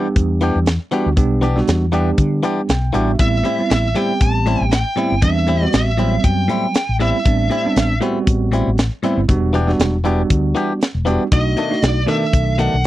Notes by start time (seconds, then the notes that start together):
Already playing: G3 B3 D4 G4
0.16 E2, kick, closed hi-hat
0.41 E3 B3 D4 G4, closed hi-hat
0.55 E2
0.66 snare, closed hi-hat
0.91 E3 G3 B3 D4 F#4 G4, closed hi-hat
1.06 D2
1.17 B1 G3 B3 D4 G4, kick, closed hi-hat
1.41 E3 B3 D4 G4, closed hi-hat
1.56 G3 B3 D4 F#4, snare
1.68 E2, snare, closed hi-hat
1.92 E3 G3 B3 D4 G4, closed hi-hat
2.18 D3, kick, closed hi-hat
2.43 E3 B3 D4 G4, closed hi-hat
2.69 B1 G5, snare, closed hi-hat
2.93 A1 E3 G3 B3 D4 F#4 G4 E5, closed hi-hat
3.19 A1 G3 B3 C4 E4 E5, kick, closed hi-hat
3.44 A2 G3 C4 E4, closed hi-hat
3.59 G3 B3 C4 E4
3.70 A1 E5, snare, closed hi-hat
3.95 A2 G3 B3 C4 E4 G4 G5, snare, closed hi-hat
4.21 A1 A5, kick, closed hi-hat
4.46 A2 G3 C4 E4, closed hi-hat
4.61 A1
4.72 G5, snare, closed hi-hat
4.96 A2 G3 B3 C4 E4, closed hi-hat
5.12 G1
5.22 E2 G3 B3 C4 D4 E5, kick, closed hi-hat
5.47 A2 G3 C4 E4, closed hi-hat
5.62 G3 B3 C4 F#4
5.73 A1 E5, snare, closed hi-hat
5.97 A2 F#3 G3 B3 C4 E4, closed hi-hat
6.24 F#2 G5, kick, closed hi-hat
6.48 A2 G3 C4 E4, closed hi-hat
6.74 snare, closed hi-hat
6.89 A1
7.00 A2 G3 B3 C4 E4 E5, closed hi-hat
7.25 A1 G3 B3 C4 D4, kick, closed hi-hat
7.50 A2 G3 C4 E4, closed hi-hat
7.65 G3 B3 C4 D4
7.76 A1, snare, closed hi-hat
8.01 A2 G3 B3 C4 E4 F#4, closed hi-hat
8.27 A1, kick, closed hi-hat
8.52 A2 G3 C4 E4, closed hi-hat
8.67 A1
8.78 snare, closed hi-hat
9.03 A2 G3 B3 C4 E4, closed hi-hat
9.17 G1
9.28 E1 G3 B3 D4 F#4, kick, closed hi-hat
9.53 E3 B3 D4 G4, closed hi-hat
9.67 G3 B3 D4 F#4, snare
9.79 E1, snare, closed hi-hat
10.04 E3 G3 B3 D4 F#4 G4, closed hi-hat
10.30 D2, kick, closed hi-hat
10.55 E3 B3 D4 G4, closed hi-hat
10.81 snare, closed hi-hat
10.94 E1
11.05 E3 G3 B3 D4 F#4 G4, closed hi-hat
11.32 B1 A3 D4 D#4 F#4 D#5, kick, closed hi-hat
11.57 B2 D#3 A3 D4, closed hi-hat
11.70 A3 D4 D#4 F#4, snare
11.82 B1 D5, snare, closed hi-hat
12.06 B2 D#3 A3 D4 A4 E5, snare, closed hi-hat
12.33 B1, kick, closed hi-hat
12.58 B2 D#3 A3 D4 F#5, closed hi-hat
12.73 B1